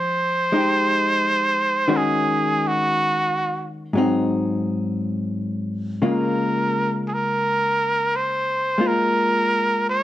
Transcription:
0.00 1.87 F3 soft
0.00 0.51 G#3 soft
0.00 0.52 D#4 soft
0.00 0.54 G4 soft
0.00 1.98 C5 medium
0.52 1.88 G#3 soft
0.52 1.88 D#4 soft
0.52 1.89 G4 soft
1.88 3.95 D#3 soft
1.88 3.95 G#3 soft
1.88 3.95 C#4 soft
1.88 3.96 F#4 soft
1.97 2.69 G#4 medium
2.67 3.66 F#4 medium
3.93 6.02 G#2 soft
3.93 6.02 F#3 soft
3.93 6.02 C4 soft
3.98 6.03 D#4 soft
6.02 10.03 C#3 soft
6.02 8.77 G#3 soft
6.02 8.78 A#3 soft
6.02 8.80 F4 soft
6.11 7.02 A#4 medium
7.08 7.15 G#4 soft
7.13 8.17 A#4 medium
8.16 8.89 C5 medium
8.78 10.03 G#3 soft
8.78 10.03 A#3 soft
8.78 10.03 F4 soft
8.87 9.86 A#4 medium
9.89 10.03 C#5 medium

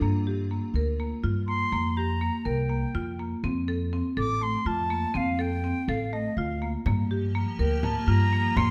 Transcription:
0.01 0.57 G2 medium
0.01 0.21 A#3 medium
0.27 0.45 G4 medium
0.51 0.69 A#3 medium
0.74 1.12 D2 medium
0.74 0.94 A#4 medium
1.00 1.18 A#3 medium
1.24 1.61 G2 medium
1.24 1.42 F4 medium
1.47 1.66 A#3 medium
1.47 1.98 C6 medium
1.72 2.29 F2 medium
1.72 1.91 A#3 medium
1.97 2.16 G4 medium
1.97 2.47 A#5 medium
2.21 2.40 A#3 medium
2.45 2.83 C2 medium
2.45 2.64 A#4 medium
2.45 3.19 G5 medium
2.70 2.88 A#3 medium
2.94 3.32 F2 medium
2.94 3.13 F4 medium
3.19 3.38 A#3 medium
3.44 4.00 F2 medium
3.44 3.62 C4 medium
3.68 3.87 A4 medium
3.93 4.11 C4 medium
4.17 4.55 A1 medium
4.17 4.36 A4 medium
4.17 4.44 D6 medium
4.41 4.60 A3 medium
4.41 4.68 C6 medium
4.65 5.03 F2 medium
4.65 4.85 F4 medium
4.65 5.18 A5 medium
4.90 5.09 A#3 medium
5.14 5.71 F2 medium
5.14 5.33 C4 medium
5.14 5.42 F5 medium
5.39 5.58 A4 medium
5.39 5.90 G5 medium
5.64 5.82 C4 medium
5.88 6.26 A1 medium
5.88 6.07 A4 medium
5.88 6.14 F5 medium
6.13 6.31 A3 medium
6.13 6.38 D#5 medium
6.37 6.74 D2 medium
6.37 6.56 F4 medium
6.37 6.74 F5 medium
6.62 6.80 A#3 medium
6.86 7.42 G2 medium
6.86 8.55 F3 medium
6.86 8.71 A#3 medium
6.86 7.05 A#3 medium
6.86 8.55 G4 medium
6.86 frame drum medium
7.11 7.29 G4 medium
7.35 7.53 A#3 medium
7.59 7.97 D2 medium
7.59 7.78 A#4 medium
7.59 7.85 G5 medium
7.83 8.02 A#3 medium
7.83 8.10 A5 medium
7.83 frame drum medium
8.07 8.45 G2 medium
8.07 8.26 F4 medium
8.07 8.58 A#5 medium
8.33 8.51 A#3 medium
8.56 8.71 F2 medium
8.56 8.71 D#3 medium
8.56 8.71 A#3 medium
8.56 8.71 F4 medium
8.56 8.71 C6 loud
8.56 frame drum medium

